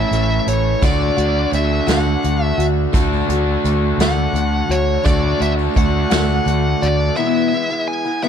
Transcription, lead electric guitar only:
0.00 0.48 E5 medium
0.49 0.84 C#5 medium
0.85 1.50 D5 medium
1.55 1.90 E5 loud
1.91 2.45 F#5 medium
2.45 2.65 E5 medium
4.02 4.74 F#5 loud
4.71 5.05 C#5 medium
5.06 5.42 D5 loud
5.43 5.52 E5 medium
5.78 6.11 F#5 loud
6.13 6.87 F#5 medium
6.82 7.16 D5 medium
7.17 7.89 E5 loud
7.88 8.23 G#5 loud
8.24 8.29 F#5 loud

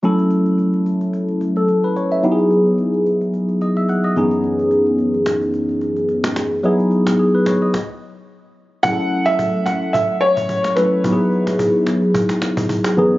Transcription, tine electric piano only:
0.03 2.19 F#3 medium
0.03 2.20 A3 medium
0.03 2.20 C#4 medium
0.03 2.20 E4 medium
0.03 1.39 A4 medium
1.57 1.83 A4 medium
1.84 1.96 B4 medium
1.97 2.11 C#5 medium
2.12 2.38 E5 medium
2.23 4.12 F#3 medium
2.23 4.12 B3 medium
2.23 4.13 D#4 medium
2.23 4.13 E4 medium
2.23 2.31 G4 medium
2.32 4.16 G#4 medium
3.62 3.76 D#5 medium
3.77 3.88 E5 medium
3.89 4.03 F#5 medium
4.04 4.30 D#5 medium
4.16 6.32 F#2 medium
4.16 6.32 E3 medium
4.16 6.33 B3 medium
4.16 6.33 C#4 medium
4.16 6.33 D#4 medium
4.16 6.33 G#4 medium
6.63 7.71 F#3 medium
6.63 7.72 B3 medium
6.63 7.72 D#4 medium
6.63 7.72 E4 medium
6.63 6.92 G#4 medium
7.19 7.34 G#4 medium
7.35 7.46 B4 medium
7.47 7.61 C#5 medium
7.62 7.88 D#5 medium
8.84 10.73 F#3 medium
8.84 10.73 A3 medium
8.84 10.73 C#4 medium
8.84 10.74 E4 medium
8.84 8.92 G#4 medium
8.92 10.77 A4 medium
10.77 11.03 F#3 soft
10.77 11.04 A3 soft
10.77 11.05 C#4 soft
10.77 11.04 E4 soft
10.77 11.05 A4 medium
11.04 12.93 F#3 medium
11.04 12.93 B3 medium
11.04 12.93 D#4 medium
11.04 12.94 E4 medium
11.04 11.12 G4 medium
11.12 12.97 G#4 medium
12.96 13.18 F#2 medium
12.96 13.18 E3 medium
12.96 13.18 B3 medium
12.96 13.18 C#4 medium
12.96 13.18 D#4 medium
12.96 13.18 G#4 medium

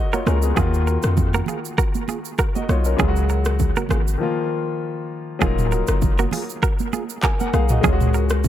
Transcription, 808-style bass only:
0.26 0.53 C#2 medium
0.57 0.98 D#2 loud
1.04 1.42 F2 medium
2.69 2.95 B1 loud
2.99 3.72 C#2 loud
3.90 4.16 G#1 medium
5.41 5.82 D#1 loud
5.88 6.27 F#1 medium
7.53 7.80 B1 medium
7.84 8.48 C#2 loud

